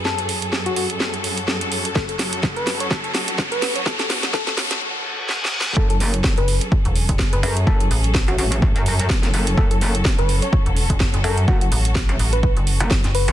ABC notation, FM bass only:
X:1
M:4/4
L:1/16
Q:"Swing 16ths" 1/4=126
K:F#m
V:1 name="FM bass" clef=bass
z16 | z16 | z16 | z4 z F,,,2 z2 E,,,2 F,,,2 F,,, z2 |
z2 A,,,3 z8 z3 | z4 z F,,,2 z2 E,,,2 F,,,2 F,,, z2 | z2 A,,,3 z A,,,3 F,,,2 z2 F,,,2 z |]